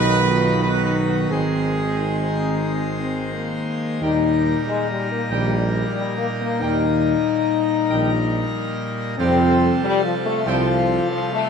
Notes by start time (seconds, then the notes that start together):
Already playing: B1 D#3 F#3 B3 D#4 B4
0.30 F4
0.63 D#4 B4
0.85 B4
1.08 F#4
1.30 G#1 G#3 C4 D#4 G#4 C5
1.99 D#4
2.99 C4
3.34 A#3
4.01 D#2 A#2 D#3 G3 D#4 A#4 G5
4.67 G#3
4.90 G3
5.12 A#3
5.30 A#1 D#3 G3 A#4 G5
5.94 G3
6.18 A#3
6.40 A#3
6.60 D#2 D#3 G3 D#4 A#4 G5
7.89 A#1 D#3 G3 A#4 G5
9.17 F2 C3 G3 C4 F4 A4 G5
9.84 G3
10.04 F3
10.26 A3
10.46 C2 F3 G3 C4 A4 G5
11.11 F3
11.34 A3